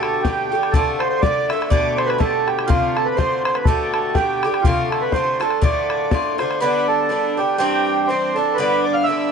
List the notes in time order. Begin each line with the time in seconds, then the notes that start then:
Already playing: B2 D3 A3 G4
0.02 A4, bodhran
0.22 B2 D3 G4, bodhran
0.26 A3 G4
0.52 D3 A3 G4
0.63 bodhran
0.71 C3 D3 A3 A4, bodhran
0.76 F4
0.99 C5, bodhran
1.09 C5
1.21 C3 D3 A3 D5, bodhran
1.26 F4
1.49 A3 F4 E5, bodhran
1.53 D3
1.62 bodhran
1.70 B2 D3 A3 G4 D5, bodhran
1.95 C5 D5, bodhran
2.06 B4, bodhran
2.18 B2 D3 A3 G4 A4, bodhran
2.47 G4, bodhran
2.59 bodhran
2.67 C3 D3 A3 F4, bodhran
2.96 A4, bodhran
3.05 B4
3.16 C3 D3 A3 C5, bodhran
3.20 F4
3.45 C5, bodhran
3.55 B4, bodhran
3.65 B2 D3 A3 G4 A4, bodhran
3.94 A4, bodhran
4.15 B2 D3 A3 G4, bodhran
4.43 D3 A3 G4, bodhran
4.54 bodhran
4.62 C3 D3 A3 F4, bodhran
4.67 F4
4.90 A4, bodhran
5.01 B4
5.12 C3 D3 A3 C5, bodhran
5.16 F4
5.40 D3 A3 F4 A4, bodhran
5.51 bodhran
5.62 A2 D3 A3 F4 D5, bodhran
5.90 bodhran
6.11 A2 D3 A3 F4, bodhran
6.38 D3 A3 F4 C5, bodhran
6.51 bodhran
6.60 G2 D3 B3 D4 B4
6.88 A4
7.09 G2 D3 B3 D4
7.37 D3 B3 D4 G4
7.58 G2 E3 C4 D4 G4
8.07 G2 E3 C4 D4 C5
8.35 E3 C4 D4 A4
8.55 G2 D3 B4
8.59 B3 D4
8.83 D5
8.94 F5
9.04 G2 D3 E5
9.09 B3 D4